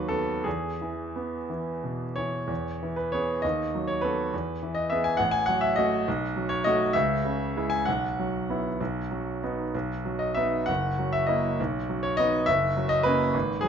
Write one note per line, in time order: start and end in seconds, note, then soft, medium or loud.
0.00 0.42 D#2 medium
0.00 0.31 F#3 soft
0.00 0.48 B4 medium
0.08 0.42 B3 soft
0.08 0.44 A4 medium
0.44 2.46 E2 soft
0.44 1.50 G#4 medium
0.81 1.37 E3 soft
1.16 1.71 B3 soft
1.50 2.04 E3 soft
1.84 2.37 B2 soft
2.16 2.50 E3 soft
2.16 2.96 C#5 medium
2.47 3.39 E2 soft
2.83 3.32 E3 soft
2.96 3.12 B4 soft
3.12 3.41 B3 soft
3.12 3.41 G#4 soft
3.12 3.43 C#5 medium
3.42 4.30 D#2 soft
3.42 3.87 D#5 medium
3.75 4.22 F#3 soft
3.88 4.03 C#5 medium
4.01 4.30 B3 soft
4.01 4.30 A4 soft
4.01 4.76 B4 medium
4.33 5.17 E2 soft
4.63 5.08 E3 soft
4.75 4.90 D#5 medium
4.90 5.17 B3 soft
4.90 5.17 G#4 soft
4.90 5.04 E5 medium
5.04 5.19 G#5 medium
5.17 6.04 A1 medium
5.17 5.32 F#5 medium
5.31 5.47 G#5 medium
5.46 5.95 F#3 soft
5.46 5.61 F#5 medium
5.61 5.76 E5 medium
5.76 6.04 A3 soft
5.76 6.04 F#4 soft
5.76 6.49 D#5 medium
6.08 6.92 B1 medium
6.37 6.83 F#3 soft
6.49 6.64 C#5 medium
6.64 6.92 A3 soft
6.64 6.92 F#4 soft
6.64 6.94 D#5 medium
6.93 7.85 C#2 medium
6.93 7.71 E5 medium
7.25 7.75 C#3 soft
7.57 7.84 G#3 soft
7.57 7.84 E4 soft
7.70 7.86 G#5 medium
7.85 8.78 B1 soft
7.85 9.42 F#5 medium
8.19 8.68 F#3 soft
8.50 8.77 B3 soft
8.50 8.77 E4 soft
8.81 9.71 B1 soft
9.11 9.61 F#3 soft
9.43 9.71 B3 soft
9.43 9.71 D#4 soft
9.75 10.66 B1 soft
10.05 10.56 F#3 soft
10.19 10.36 D#5 medium
10.35 10.65 B3 soft
10.35 10.65 D#4 soft
10.35 10.67 E5 medium
10.66 11.56 F#1 medium
10.66 11.12 F#5 medium
10.98 11.46 F#3 soft
11.13 11.28 E5 medium
11.27 11.55 A#3 soft
11.27 11.56 E4 soft
11.27 11.57 D#5 medium
11.60 12.45 B1 medium
11.89 12.36 F#3 soft
12.03 12.18 C#5 medium
12.17 12.45 B3 soft
12.17 12.45 D#4 soft
12.17 12.47 D#5 medium
12.46 13.32 F#1 medium
12.46 12.90 E5 medium
12.77 13.23 F#3 soft
12.89 13.04 D#5 medium
13.03 13.32 A#3 soft
13.03 13.32 C#4 soft
13.03 13.63 B4 medium
13.34 13.68 G#1 medium
13.61 13.68 F#3 soft
13.61 13.68 G#4 medium